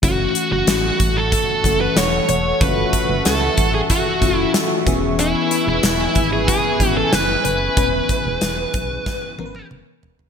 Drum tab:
HH |x-x-x-x-x-x-x-x-|x-x-x-x-x-x-x-x-|x-x-x-x-x-x-x-x-|x-x-x-x---------|
SD |----o-------o---|----o-------o---|----o-------o---|----o---o-------|
T1 |----------------|----------------|----------------|----------oo----|
T2 |----------------|----------------|----------------|------------o---|
FT |----------------|----------------|----------------|--------------oo|
BD |o-----o-o-o-----|o-o---o-o-o---o-|------o-o-o-----|o-o---o-o-------|